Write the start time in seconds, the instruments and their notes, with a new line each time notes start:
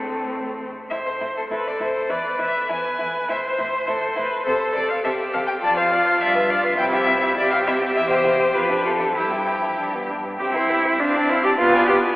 Already playing: cello A2, viola A3, violin C4 A4
0.90 cello A2, violin E4 E5, viola C5
1.06 violin C5
1.21 cello A2, violin E4
1.37 violin A4
1.50 cello A2, violin E4 B4, viola A4
1.68 violin D5
1.80 cello A2, violin E4 C5
2.09 cello E2, violin E4 D5, viola B4
2.39 cello E2, violin E4 E5
2.69 cello E2, violin E4 G#5, viola B4
2.98 cello E2, violin E4
3.28 cello A2, violin E4 E5, viola C5
3.46 violin C5
3.58 cello A2, violin E4
3.87 cello A2, violin E4 A4
4.16 cello A2, violin E4 B4
4.46 cello C3, viola A4, violin A4 C5
4.75 cello C3, violin A4 D5
4.90 violin F5
5.04 cello C3, viola G4, violin A4 E5
5.33 cello C3, violin A4 F5
5.46 violin G5
5.63 cello F2, viola F4, violin D5 A5
5.77 violin C5 F5
5.92 violin D5
6.06 violin C5
6.20 cello G2, violin D5 E5
6.35 violin B4
6.50 violin D5 F5
6.64 violin B4
6.77 cello C3, violin E4 G5, viola E4
6.93 violin G4 E5
7.07 violin E4
7.23 violin G4
7.37 cello C3, violin E4 D5, viola G4
7.51 violin G4 F5
7.67 violin E4 E5
7.81 violin G4
7.96 cello E2, violin E4 E5
8.10 violin G4 C5
8.25 violin E4
8.39 violin G4
8.54 cello F2, violin F4 B4
8.69 violin D4
8.84 violin F4 A4
9.00 violin D4
9.16 cello G2, viola E4, violin G4
9.32 violin E4
9.47 violin G4
9.62 violin E4
9.78 cello G2, violin D4
9.95 violin B3
10.10 violin D4
10.25 violin B3
10.39 viola C4, violin G4 E5, cello G4
10.54 cello E4, violin C5 G5
10.70 violin G4 E5
10.85 violin C5 G5
11.00 viola C4, cello D4, violin C5 F5
11.15 violin D5 A5
11.29 cello E4, violin C5 F5
11.43 cello G4, violin D5 A5
11.58 viola B3, cello F4, violin B4 F5
11.73 violin D5 G#5
11.87 cello G4, violin B4 F5
12.03 violin D5 G#5